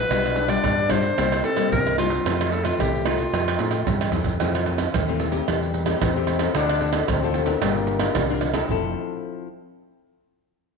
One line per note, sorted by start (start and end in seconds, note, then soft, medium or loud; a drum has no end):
0.00 0.51 B4 loud
0.10 0.56 B1 loud
0.10 0.62 B2 medium
0.10 0.36 G3 medium
0.10 1.20 D4 loud
0.10 0.36 D4 medium
0.10 0.37 F4 medium
0.10 pandeiro medium
0.10 tamborim medium
0.10 shaker medium
0.10 surdo medium
0.26 pandeiro soft
0.26 tamborim medium
0.26 shaker soft
0.36 pandeiro medium
0.36 shaker medium
0.48 0.86 G3 medium
0.48 0.86 D4 medium
0.48 0.86 F4 medium
0.48 0.92 D5 loud
0.48 pandeiro medium
0.48 tamborim medium
0.48 shaker medium
0.64 1.10 G2 loud
0.64 1.16 B2 medium
0.64 pandeiro medium
0.64 tamborim medium
0.64 shaker medium
0.64 surdo loud
0.78 pandeiro soft
0.78 shaker soft
0.90 1.07 G3 medium
0.90 1.07 D4 medium
0.90 1.07 F4 medium
0.90 1.44 C5 loud
0.90 pandeiro medium
0.90 tamborim medium
0.90 shaker medium
0.90 surdo medium
1.02 pandeiro medium
1.02 shaker medium
1.17 1.41 C2 loud
1.17 1.69 C3 medium
1.17 1.43 G3 medium
1.17 1.44 A#3 medium
1.17 2.26 C4 loud
1.17 1.44 E4 medium
1.17 pandeiro medium
1.17 tamborim medium
1.17 shaker medium
1.17 surdo medium
1.32 pandeiro soft
1.32 tamborim medium
1.32 shaker soft
1.44 1.70 A4 loud
1.44 pandeiro medium
1.56 1.93 G3 medium
1.56 1.94 A#3 medium
1.56 1.94 E4 medium
1.56 pandeiro medium
1.56 tamborim medium
1.56 shaker medium
1.72 2.17 C2 loud
1.72 2.23 G2 medium
1.72 1.97 A#4 loud
1.72 pandeiro medium
1.72 shaker medium
1.72 surdo loud
1.87 pandeiro soft
1.87 tamborim medium
1.87 shaker soft
1.98 2.15 G3 medium
1.98 2.15 A#3 soft
1.98 2.15 E4 medium
1.98 2.53 F4 medium
1.98 pandeiro medium
1.98 tamborim medium
1.98 shaker medium
2.10 pandeiro medium
2.10 shaker medium
2.25 2.71 F2 medium
2.25 2.77 F2 medium
2.25 2.52 E3 medium
2.25 4.10 A3 medium
2.25 2.52 A3 medium
2.25 2.52 C4 medium
2.25 pandeiro medium
2.25 tamborim medium
2.25 shaker medium
2.25 surdo medium
2.41 pandeiro soft
2.41 tamborim medium
2.41 shaker soft
2.51 2.66 A4 medium
2.51 pandeiro medium
2.64 3.01 E3 medium
2.64 3.01 A3 medium
2.64 3.02 C4 medium
2.64 2.82 F4 medium
2.64 pandeiro medium
2.64 tamborim medium
2.64 shaker medium
2.79 3.25 C2 medium
2.79 3.30 C3 medium
2.79 3.08 G4 medium
2.79 pandeiro medium
2.79 tamborim medium
2.79 shaker medium
2.79 surdo loud
2.95 pandeiro soft
2.95 shaker soft
3.05 3.22 E3 medium
3.05 3.22 A3 medium
3.05 3.22 C4 medium
3.05 4.14 F4 medium
3.05 pandeiro medium
3.05 tamborim medium
3.18 pandeiro medium
3.18 shaker medium
3.33 3.56 F2 medium
3.33 3.84 F2 medium
3.33 3.70 A3 medium
3.33 3.70 C4 medium
3.33 pandeiro medium
3.33 tamborim medium
3.33 shaker medium
3.33 surdo medium
3.48 pandeiro soft
3.48 tamborim medium
3.48 shaker soft
3.59 3.83 A2 medium
3.59 pandeiro medium
3.59 shaker medium
3.71 4.08 A3 medium
3.71 4.09 C4 medium
3.71 pandeiro medium
3.71 tamborim medium
3.71 shaker medium
3.86 4.11 G2 medium
3.86 4.38 C3 medium
3.86 pandeiro medium
3.86 shaker medium
3.86 surdo loud
4.01 pandeiro soft
4.01 tamborim medium
4.01 shaker soft
4.12 4.37 F2 medium
4.12 4.36 E3 medium
4.12 4.36 A3 medium
4.12 4.36 C4 medium
4.12 surdo medium
4.12 pandeiro medium
4.12 shaker medium
4.24 pandeiro medium
4.24 shaker medium
4.24 surdo loud
4.40 4.91 F2 medium
4.40 4.86 F2 loud
4.40 4.63 E3 medium
4.40 4.90 F3 medium
4.40 4.63 A3 medium
4.40 4.63 C4 medium
4.40 pandeiro medium
4.40 tamborim medium
4.40 shaker medium
4.40 surdo medium
4.55 pandeiro soft
4.55 tamborim medium
4.55 shaker soft
4.66 4.92 E3 medium
4.66 4.92 A3 medium
4.66 4.92 C4 medium
4.66 pandeiro medium
4.66 surdo soft
4.78 pandeiro medium
4.78 tamborim medium
4.78 shaker medium
4.78 surdo soft
4.94 5.40 D#2 medium
4.94 5.45 C3 medium
4.94 5.49 A3 medium
4.94 pandeiro medium
4.94 tamborim medium
4.94 shaker medium
4.94 surdo loud
5.08 5.30 E3 medium
5.08 5.30 A3 medium
5.08 5.30 C4 medium
5.08 pandeiro soft
5.08 shaker soft
5.20 pandeiro medium
5.20 shaker medium
5.31 5.82 A3 medium
5.31 5.82 C4 medium
5.31 5.83 G4 medium
5.31 pandeiro medium
5.31 shaker medium
5.31 surdo soft
5.48 5.94 E2 loud
5.48 5.99 E3 medium
5.48 6.01 G3 medium
5.48 pandeiro medium
5.48 tamborim medium
5.48 shaker medium
5.48 surdo medium
5.62 pandeiro soft
5.62 shaker soft
5.74 pandeiro medium
5.74 shaker medium
5.85 6.09 A3 medium
5.85 6.09 C4 medium
5.85 6.09 G4 medium
5.85 pandeiro medium
5.85 tamborim medium
5.85 shaker medium
5.85 surdo soft
6.01 6.47 E2 medium
6.01 6.52 E3 medium
6.01 6.51 C4 loud
6.01 pandeiro medium
6.01 tamborim medium
6.01 shaker medium
6.01 surdo loud
6.16 6.38 A3 medium
6.16 6.38 C4 medium
6.16 6.38 G4 medium
6.16 pandeiro soft
6.16 shaker soft
6.27 pandeiro medium
6.27 tamborim medium
6.27 shaker medium
6.39 6.76 C4 medium
6.39 6.77 F4 medium
6.39 6.77 A4 medium
6.39 pandeiro medium
6.39 tamborim medium
6.39 shaker medium
6.39 surdo soft
6.55 7.01 D2 loud
6.55 7.06 D3 medium
6.55 7.05 D4 loud
6.55 pandeiro medium
6.55 tamborim medium
6.55 shaker medium
6.55 surdo medium
6.69 pandeiro soft
6.69 tamborim medium
6.69 shaker soft
6.81 7.17 C4 medium
6.81 7.17 F4 soft
6.81 7.18 A4 medium
6.81 pandeiro medium
6.93 pandeiro medium
6.93 tamborim medium
6.93 shaker medium
6.93 surdo soft
7.08 7.54 D2 medium
7.08 7.60 A2 medium
7.08 7.65 C4 loud
7.08 pandeiro medium
7.08 tamborim medium
7.08 shaker medium
7.08 surdo loud
7.23 7.45 C4 medium
7.23 7.45 F4 medium
7.23 7.45 A4 medium
7.23 pandeiro soft
7.23 shaker soft
7.34 pandeiro medium
7.46 7.97 D4 medium
7.46 7.97 F4 medium
7.46 7.97 A#4 medium
7.46 pandeiro medium
7.46 shaker medium
7.46 surdo soft
7.62 8.08 G1 loud
7.62 8.13 G3 medium
7.62 8.15 A#3 loud
7.62 pandeiro medium
7.62 tamborim medium
7.62 shaker medium
7.62 surdo medium
7.76 pandeiro soft
7.76 shaker soft
7.87 pandeiro medium
7.99 8.24 D4 medium
7.99 8.24 F4 medium
7.99 8.24 A#4 medium
7.99 pandeiro medium
7.99 tamborim medium
7.99 shaker medium
7.99 surdo soft
8.15 8.61 C2 loud
8.15 8.67 D3 medium
8.15 8.42 G3 loud
8.15 pandeiro medium
8.15 tamborim medium
8.15 shaker medium
8.15 surdo loud
8.30 8.52 D4 medium
8.30 8.52 F4 medium
8.30 8.53 A#4 medium
8.30 pandeiro soft
8.30 shaker soft
8.41 8.68 F3 medium
8.41 pandeiro medium
8.41 tamborim medium
8.41 shaker medium
8.54 8.69 C4 medium
8.54 8.70 E4 medium
8.54 8.70 A4 medium
8.54 pandeiro medium
8.54 tamborim medium
8.54 shaker medium
8.54 surdo soft
8.69 8.94 F1 loud
8.69 9.47 F3 medium
8.69 8.94 A3 medium
8.69 9.47 C4 medium
8.69 9.47 E4 medium
8.69 9.47 A4 medium
8.69 surdo medium